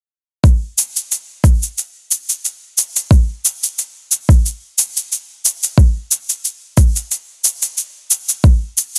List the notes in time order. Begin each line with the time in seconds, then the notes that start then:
0.44 kick, cabasa
0.78 cabasa
0.96 cabasa
1.12 cabasa
1.44 kick, cabasa
1.63 cabasa
1.78 cabasa
2.11 cabasa
2.29 cabasa
2.45 cabasa
2.78 cabasa
2.96 cabasa
3.11 kick, cabasa
3.45 cabasa
3.63 cabasa
3.79 cabasa
4.12 cabasa
4.29 kick, cabasa
4.46 cabasa
4.79 cabasa
4.97 cabasa
5.12 cabasa
5.45 cabasa
5.63 cabasa
5.78 kick, cabasa
6.11 cabasa
6.29 cabasa
6.45 cabasa
6.77 kick, cabasa
6.96 cabasa
7.11 cabasa
7.45 cabasa
7.62 cabasa
7.78 cabasa
8.11 cabasa
8.29 cabasa
8.44 kick, cabasa
8.78 cabasa
8.96 cabasa